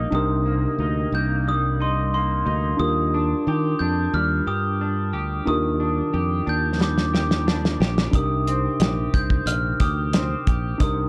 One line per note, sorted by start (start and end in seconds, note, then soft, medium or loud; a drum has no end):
0.00 0.11 C3 medium
0.00 1.47 G3 medium
0.00 0.45 A#3 medium
0.00 0.79 D#4 medium
0.00 0.10 A#4 medium
0.11 0.66 C2 loud
0.11 2.80 C3 medium
0.11 2.75 D4 medium
0.11 2.76 D#4 medium
0.11 2.77 G4 medium
0.15 2.78 A#4 medium
0.15 1.17 D#6 medium
0.46 1.13 A#3 medium
0.79 1.06 D2 medium
0.79 1.80 D#4 medium
1.12 2.42 C2 medium
1.12 2.13 A#3 medium
1.12 1.48 G6 medium
1.48 4.14 G3 medium
1.48 1.79 D#6 loud
1.80 2.45 D#4 medium
1.80 2.12 C6 medium
2.14 5.64 A#3 medium
2.14 2.60 C6 medium
2.46 2.73 D2 medium
2.46 3.14 D#4 medium
2.77 3.33 D#2 loud
2.77 5.41 D4 medium
2.77 5.42 F4 medium
2.77 5.43 G4 medium
2.77 3.83 D#6 loud
2.82 5.44 A#4 medium
3.14 3.81 D4 medium
3.47 3.74 D#3 medium
3.47 4.47 G4 medium
3.79 4.07 F2 medium
3.79 4.80 D4 medium
3.79 4.11 G6 medium
4.14 4.40 D#2 loud
4.14 6.80 G3 medium
4.14 4.45 F6 medium
4.47 5.13 G2 medium
4.47 5.13 G4 medium
4.47 5.10 D#6 medium
4.81 5.79 D4 medium
5.13 5.40 D2 medium
5.13 6.13 G4 medium
5.45 6.00 D#2 loud
5.45 8.14 D#3 medium
5.45 8.09 D4 medium
5.45 8.10 F4 medium
5.45 8.11 G4 medium
5.45 6.51 D#6 medium
5.51 8.12 A#4 medium
5.80 6.45 D4 medium
6.14 6.40 F2 medium
6.14 7.13 G4 medium
6.47 7.76 D#2 medium
6.47 7.46 D4 medium
6.47 6.82 G6 medium
6.80 10.30 G3 medium
6.80 7.78 D6 medium
6.80 snare medium
6.98 snare medium
7.14 7.80 G4 medium
7.14 snare medium
7.31 snare medium
7.47 8.21 D4 medium
7.47 snare medium
7.65 snare medium
7.80 8.07 A#1 medium
7.80 8.80 G4 medium
7.80 snare medium
7.98 snare medium
8.12 8.67 C2 loud
8.12 10.80 C3 medium
8.12 10.75 D4 medium
8.12 10.76 D#4 medium
8.12 10.77 G4 medium
8.12 9.17 D#6 medium
8.12 kick loud
8.12 closed hi-hat loud
8.16 10.78 A#4 medium
8.47 9.12 C4 medium
8.47 closed hi-hat medium
8.80 9.07 A#1 medium
8.80 9.79 G4 medium
8.80 snare loud
8.80 closed hi-hat loud
9.13 9.40 C2 medium
9.13 10.12 C4 medium
9.13 9.48 G6 medium
9.13 kick medium
9.13 closed hi-hat medium
9.30 kick medium
9.46 9.73 A#1 loud
9.46 9.81 F6 loud
9.46 closed hi-hat loud
9.80 10.34 D2 medium
9.80 10.47 G4 medium
9.80 10.43 D#6 medium
9.80 kick medium
9.80 closed hi-hat medium
10.13 11.09 C4 medium
10.13 snare loud
10.13 closed hi-hat loud
10.47 10.74 A#1 medium
10.47 11.09 G4 medium
10.47 kick medium
10.47 closed hi-hat medium
10.78 11.09 C2 loud
10.78 11.09 C3 medium
10.78 11.09 D4 medium
10.78 11.09 D#4 medium
10.78 11.09 G4 medium
10.78 11.09 D#6 medium
10.78 kick loud
10.78 closed hi-hat loud
10.83 11.09 A#4 medium